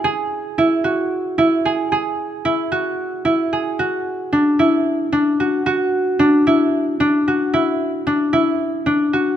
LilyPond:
\new Staff \with { instrumentName = "Harp" } { \time 7/8 \key d \lydian \tempo 4 = 112 gis'4 e'8 fis'4 e'8 gis'8 | gis'4 e'8 fis'4 e'8 gis'8 | fis'4 d'8 e'4 d'8 fis'8 | fis'4 d'8 e'4 d'8 fis'8 |
e'4 d'8 e'4 d'8 fis'8 | }